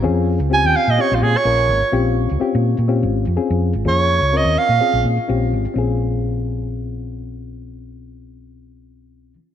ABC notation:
X:1
M:4/4
L:1/16
Q:"Swing 16ths" 1/4=125
K:Bbdor
V:1 name="Soprano saxophone"
z4 a g f e d F A d4- d- | d z12 z3 | d4 e2 f4 z6 | z16 |
z16 |]
V:2 name="Reed electric piano"
[CDFA]2 z2 [CDFG]2 z2 [CDFG]2 z2 [B,DFB]2 z2 | [CDFG]2 z2 [CDFG]2 z2 [CDFG]2 z2 [CDFA]2 z2 | [B,DFA]2 z2 [CDFB]2 z2 [CDFA]2 z2 [CDFG]2 z2 | [CDFA]16- |
[CDFA]16 |]
V:3 name="Fingered electric bass" clef=bass
F,,3 D,,2 E,, z B,, z B,,, B,, z B,,,2 A,,, z | B,,,3 D,, z B,,2 B,,2 A,,,2 F,, z F,,2 A,,, | F,,3 D,,2 E,, z B,, z B,,, B,, z B,,,2 A,,, z | B,,,16- |
B,,,16 |]